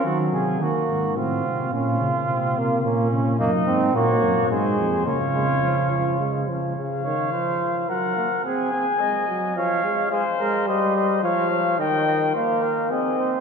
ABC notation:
X:1
M:3/4
L:1/8
Q:1/4=107
K:Bbm
V:1 name="Trumpet"
z6 | z6 | [K:Db] e2 d2 c2 | d4- d z |
f4 g2 | a4 d2 | c2 e e f2 | =g2 f2 e2 |]
V:2 name="Flugelhorn"
G A G2 F2 | F4 D2 | [K:Db] E2 G2 A2 | F4- F z |
z d c2 B2 | A2 e2 f2 | A B c2 d d | e e c B A c |]
V:3 name="Trombone" clef=bass
G,2 B,2 C2 | D2 C B, B, D | [K:Db] B, C B,2 A,2 | B, A, F, F, A, F, |
D, E, F,2 G, B, | C C A, G, F, A, | A, A, =G,2 F,2 | E,2 B,2 C2 |]
V:4 name="Tuba" clef=bass
E, C, E, A,, =A,, C, | B,, D, C,2 B,,2 | [K:Db] G,, A,, B,, G,, A,, F,, | D,4- D, z |
z6 | z6 | z6 | z6 |]